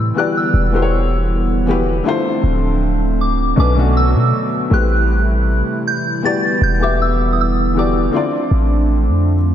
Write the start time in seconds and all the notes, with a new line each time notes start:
Already playing: A2 C3 E3 G3 A3 C4 E4 G4 B4 E6
0.14 D3 E3 B3 F#4 G4 F#6
0.19 D5
0.37 E6
0.54 E1
0.71 E3 B3 F#4 G4
0.76 C5
0.82 C#5
1.66 E3 B3 F#4 G4
1.71 B4
2.04 D3 F3 A3 C4 D4 E4 F4
2.08 C5
2.43 D1
3.21 D6
3.56 B1 B2 F#3 A3 B3 C#4 D4 F#4 D6
3.61 B4
3.75 B2 A3 C#4 D4
3.79 F#4
3.97 E6
4.15 B2
4.70 A1 A2 C3 E3 G3 A3 C4 E4 G4 F#6
4.74 B4
5.87 G6
6.22 D3 E3 B3 F#4 G4 A6
6.26 D5
6.61 E1 G6
6.79 E3 B3 F#4 G4 D6
6.83 E5
7.02 E6
7.33 D#6
7.41 E6
7.74 E3 B3 F#4 G4
7.79 D5 D6
8.11 D3 F3 A3 C4 D4 E4 F4
8.16 D5
8.51 A1
9.08 F2